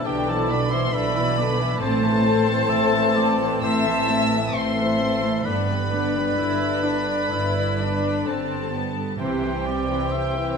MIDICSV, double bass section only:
0, 0, Header, 1, 2, 480
1, 0, Start_track
1, 0, Tempo, 873362
1, 994, Time_signature, 4, 2, 24, 8
1, 1480, Tempo, 928793
1, 5553, End_track
2, 0, Start_track
2, 0, Title_t, "Double bass section"
2, 0, Program_c, 0, 48
2, 43, Note_on_c, 0, 35, 72
2, 461, Note_off_c, 0, 35, 0
2, 516, Note_on_c, 0, 35, 75
2, 938, Note_off_c, 0, 35, 0
2, 991, Note_on_c, 0, 33, 87
2, 1421, Note_off_c, 0, 33, 0
2, 1478, Note_on_c, 0, 33, 78
2, 1911, Note_off_c, 0, 33, 0
2, 1965, Note_on_c, 0, 33, 79
2, 2383, Note_off_c, 0, 33, 0
2, 2441, Note_on_c, 0, 33, 76
2, 2854, Note_off_c, 0, 33, 0
2, 2909, Note_on_c, 0, 31, 76
2, 3332, Note_off_c, 0, 31, 0
2, 3389, Note_on_c, 0, 31, 64
2, 3817, Note_off_c, 0, 31, 0
2, 3874, Note_on_c, 0, 31, 65
2, 4305, Note_off_c, 0, 31, 0
2, 4363, Note_on_c, 0, 31, 64
2, 4789, Note_off_c, 0, 31, 0
2, 4850, Note_on_c, 0, 36, 72
2, 5244, Note_off_c, 0, 36, 0
2, 5553, End_track
0, 0, End_of_file